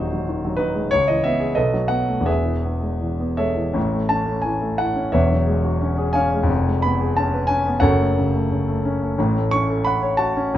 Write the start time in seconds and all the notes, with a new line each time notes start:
Already playing: D#1 D#2 F#3 D#4 F#4 G#4 C5
0.13 F#3
0.29 D#3
0.45 F#3
0.57 D#4 B4
0.75 G#3
0.91 C#2 C#5
1.08 E3 D#5
1.24 B3 E5
1.40 G#4
1.55 B1 A4 B4 D#5
1.74 F#3
1.88 B3 F#5
2.09 A3
2.21 E2
2.26 E1 G#4 B4 E5
2.45 E3
2.65 B3
2.81 G#3
3.01 E3
3.20 B3
3.37 G#3 A4 C#5 E5
3.56 E3
3.74 A1 A2
3.93 A3
4.09 C#4 A5
4.26 A3
4.42 E3 G#5
4.62 A3
4.78 E4 F#5
4.96 C#4
5.12 E1 E2 B4 C#5 E5
5.32 F#3
5.47 G#3
5.64 F#4
5.82 C#4
5.98 G#4
6.13 C#4 C#5 F5 G#5
6.34 G#3
6.43 F2
6.49 F1
6.67 G#3
6.82 B3 B5
7.01 G#4
7.17 C#4 A5
7.34 B4
7.47 C#4 G#5
7.67 B3
7.80 F#1 F#2 A4 C#5 F#5
8.00 A3
8.19 C#3
8.35 A3
8.52 C#3
8.68 A3
8.85 C#4
9.03 A3
9.18 A1 A2
9.38 A3
9.51 C#4 C#6
9.70 A4
9.85 F#5 B5
10.03 C#5
10.17 F#4 A5
10.37 C#4
10.54 A1 A2